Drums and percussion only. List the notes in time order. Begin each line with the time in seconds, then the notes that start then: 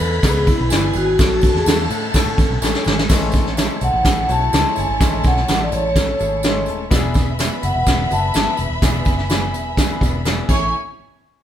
0.00 tambourine
0.23 kick, snare, ride, tambourine
0.47 kick, ride, tambourine
0.70 snare, ride, tambourine
0.93 ride, tambourine
1.19 kick, snare, ride, tambourine
1.41 kick, ride, tambourine
1.56 snare
1.66 snare, ride, tambourine
1.90 ride, tambourine
2.14 kick, snare, ride, tambourine
2.38 kick, ride, tambourine
2.62 snare, tambourine
2.75 snare
2.84 snare, tambourine
2.99 snare
3.09 kick, snare, crash, tambourine
3.32 kick, closed hi-hat, tambourine
3.46 snare
3.57 snare, closed hi-hat, tambourine
3.81 closed hi-hat, tambourine
4.04 kick, snare, closed hi-hat, tambourine
4.29 closed hi-hat, tambourine
4.53 snare, closed hi-hat, tambourine
4.76 closed hi-hat, tambourine
5.01 kick, snare, closed hi-hat, tambourine
5.24 kick, closed hi-hat, tambourine
5.37 snare
5.48 snare, closed hi-hat, tambourine
5.72 closed hi-hat, tambourine
5.95 kick, snare, closed hi-hat, tambourine
6.19 closed hi-hat, tambourine
6.43 snare, closed hi-hat, tambourine
6.66 closed hi-hat, tambourine
6.91 kick, snare, closed hi-hat, tambourine
7.14 kick, closed hi-hat, tambourine
7.39 snare, closed hi-hat, tambourine
7.63 closed hi-hat, tambourine
7.87 kick, snare, closed hi-hat, tambourine
8.10 closed hi-hat, tambourine
8.34 snare, closed hi-hat, tambourine
8.57 closed hi-hat, tambourine
8.82 kick, snare, closed hi-hat, tambourine
9.05 kick, closed hi-hat, tambourine
9.18 snare
9.30 snare, closed hi-hat, tambourine
9.54 closed hi-hat, tambourine
9.77 kick, snare, closed hi-hat, tambourine
10.01 kick, closed hi-hat, tambourine
10.25 snare, closed hi-hat, tambourine
10.49 kick, crash, tambourine